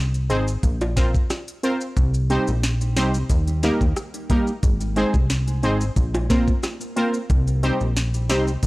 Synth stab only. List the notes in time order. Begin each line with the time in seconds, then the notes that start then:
0.30 C4 D#4 G#4 C5
0.96 C4 F4 A#4 C5
1.63 C4 F4 A#4 C5
2.30 C4 D#4 G4 C5
2.96 C4 D#4 G4 C5
3.63 A#3 D#4 G4 A#4
4.30 A#3 D#4 G4 A#4
4.96 C4 D#4 G#4 C5
5.63 C4 D#4 G#4 C5
6.30 C4 F4 A#4 C5
6.96 C4 F4 A#4 C5
7.63 C4 D#4 G4 C5
8.29 C4 D#4 G4 C5